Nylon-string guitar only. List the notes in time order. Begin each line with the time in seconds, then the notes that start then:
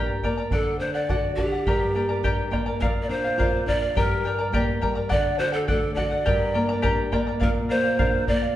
Already playing: G2 D4
0.24 A#3
0.52 D3
0.81 D4
1.10 F#4
1.38 D4
1.67 G2
1.95 A#3
2.23 D4
2.51 A#3
2.80 A#2
3.09 D4
3.38 F4
3.66 D4
3.95 G2
4.24 G3
4.52 A#3
4.82 G3
5.11 D3
5.39 F#4
5.68 A3
5.97 F#4
6.26 G2
6.55 A#3
6.84 D4
7.12 A#3
7.41 A#2
7.71 A#3
7.99 D4
8.28 A#3